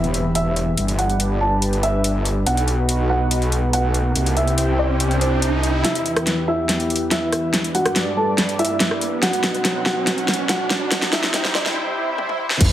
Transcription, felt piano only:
Already playing: E5
0.35 E5
0.99 F#5
1.41 A5
1.83 E5
2.46 F#5
3.10 F#5
3.73 F#5
4.37 E5
4.79 D5
5.21 C5
5.84 E4 E5
6.48 E4 E5
7.11 E4 E5
7.75 F#4 F#5
8.17 A4 A5
8.59 E4 E5
9.22 F#4 F#5
9.86 F#4 F#5
10.49 F#4 F#5
11.13 E4 E5
11.55 D4 D5

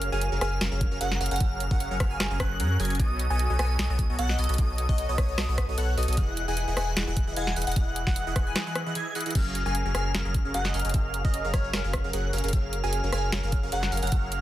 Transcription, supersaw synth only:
0.12 F#3 C#4 G#4 A#4 F5
0.32 F#3 C#4 G#4 A#4 F5
0.41 F#3 C#4 G#4 A#4 F5
0.61 F#3 C#4 G#4 A#4 F5
0.72 F#3 C#4 G#4 A#4 F5
0.92 F#3 C#4 G#4 A#4 F5
1.01 F#3 C#4 G#4 A#4 F#5
1.21 F#3 C#4 G#4 A#4 F5
1.31 F#3 C#4 G#4 A#4 F5
1.41 A#4
1.71 F#3 C#4 G#4 A#4 F5
1.91 F#3 C#4 G#4 A#4 F5
2.00 F#3 F5
2.20 F#3 C#4 G#4 A#4 F5
2.31 F#3 C#4 G#4 A#4 F5
2.40 F#3 F#5
2.60 F#3 C#4 G#4 A#4 F#5
2.80 F#3 C#4 G#4 A#4 G#5
3.00 B3 F#4 A4 C#5 D#5
3.30 B3 F#4 A4 C#5 D#5
3.50 B3 F#4 A4 C#5 D#5
3.59 B3 F#4 A4 C#5 D#5
3.79 B3 F#4 A4 C#5 D#5
3.90 B3 F#4 A4 C#5 D#5
4.10 B3 F#4 A4 C#5 D#5
4.19 B3 F#4 A4 C#5 F#5
4.39 B3 F#4 A4 C#5 D#5
4.49 B3 F#4 A4 C#5 D#5
4.59 B3
4.89 B3 F#4 A4 C#5 D#5
5.09 B3 F#4 A4 C#5 D#5
5.38 B3 F#4 A4 C#5 D#5
5.49 B3 F#4 A4 C#5 D#5
5.69 B3 F#4 A4 C#5 D#5
5.78 B3 F#4 A4 C#5 F#5
5.98 B3 F#4 A4 C#5 D#5
6.08 B3 F#4 A4 C#5 D#5
6.17 E3 E4 G#4 D#5
6.48 E3 E4 G#4 D#5 F#5
6.68 E3 E4 G#4 D#5 F#5
6.77 E3 E4 G#4 D#5 F#5
6.97 E3 E4 G#4 D#5 F#5
7.08 E3 E4 G#4 D#5 F#5
7.27 E3 E4 G#4 D#5 F#5
7.37 E3 E4 G#4 D#5 G#5
7.57 E3 E4 G#4 D#5 F#5
7.67 E3 E4 G#4 D#5 F#5
7.77 E3 D#5 F#5
8.07 G#4 F#5
8.27 E3 E4 G#4 D#5 F#5
8.36 E3 E4 G#4 D#5
8.56 E3 E4 G#4 D#5 F#5
8.67 E3 E4 G#4 D#5 F#5
8.86 E3 E4 G#4 D#5 F#5
8.96 E3 E4 G#4 D#5 G#5
9.16 E3 E4 G#4 D#5 F#5
9.26 E3 E4 G#4 D#5 F#5
9.35 F#3 C#4 G#4 A#4 F5
9.66 F#3 C#4 G#4 A#4 F5
9.86 F#3 C#4 G#4 A#4 F5
9.95 F#3 C#4 G#4 A#4 F5
10.15 F#3 C#4 G#4 A#4 F5
10.25 F#3 C#4 G#4 A#4 F5
10.45 F#3 C#4 G#4 A#4 F5
10.54 F#3 C#4 G#4 A#4 F#5
10.74 F#3 C#4 G#4 A#4 F5
10.85 F#3 C#4 G#4 A#4 F5
10.94 F#3 C#4 G#4 A#4 F5
11.25 F#3 C#4 G#4 A#4 F5
11.45 F#3 C#4 G#4 A#4 F5
11.54 C#4
11.74 F#3 C#4 G#4 A#4 F5
11.84 F#3 C#4 G#4 A#4 F5
12.04 F#3 C#4 G#4 A#4 F5
12.13 F#3 C#4 G#4 A#4 F#5
12.33 F#3 C#4 G#4 A#4 F5
12.44 F#3 C#4 G#4 A#4 F5
12.84 F#3 C#4 G#4 A#4 F5
13.04 F#3 C#4 G#4 A#4 F5
13.13 F#3 C#4 G#4 A#4 F5
13.33 F#3 C#4 G#4 A#4 F5
13.43 F#3 C#4 G#4 A#4 F5
13.63 F#3 C#4 G#4 A#4 F5
13.72 F#3 C#4 G#4 A#4 F#5
13.92 F#3 C#4 G#4 A#4 F5
14.03 F#3 C#4 G#4 A#4 F5
14.12 F#3 G#4

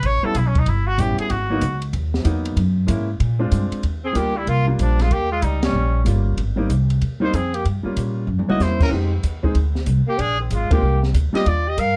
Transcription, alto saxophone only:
4.04 C4
4.15 A#3
4.36 G3
4.48 A#3
4.69 D3
4.79 F3
5.01 G#3
5.11 A#3
5.31 G#3
5.43 G3
5.63 G3
7.22 D#4
7.34 C4
7.54 A#3
8.49 F#4
8.62 E4
8.82 C#4
10.07 A#3
10.18 D4
10.40 D#3
10.51 G#3
10.71 A#3
11.35 G4
11.47 F4
11.67 G4
11.79 A#4

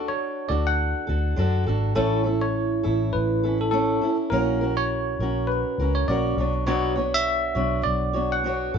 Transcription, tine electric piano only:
0.08 C#5
0.49 D5
0.67 F#5
1.96 A4
2.42 C#5
3.13 B4
3.61 A4
3.71 A4
4.30 A#4
4.77 C#5
5.47 B4
5.95 C#5
6.08 D5
6.67 C#5
7.14 E5
7.83 D5
8.32 F#5

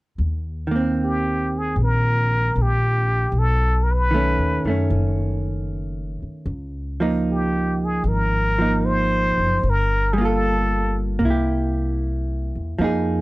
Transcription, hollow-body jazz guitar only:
0.67 D#3
0.71 A#3
0.76 C4
4.11 D#3 A3
4.16 C#4
4.66 D#3 A3 C#4
7.00 F3 A#3 D#4
8.59 F3 A#3 D#4
10.13 G3
10.18 A#3 F4
10.25 A4
11.19 A#3
11.25 E4
11.30 G4
12.78 F3 A#3 D#4
12.84 G#4

